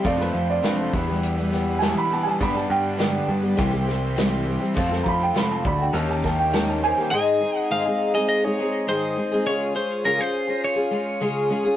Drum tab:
HH |x---x---x---x---|x---x---x---x---|x---x---x---x---|----------------|
SD |-o--o-----o-o---|----o-----o-o---|-o--o-----o-o---|----------------|
BD |o-----o---------|o-------o-------|o-o---o---o-----|----------------|

HH |----------------|
SD |----------------|
BD |----------------|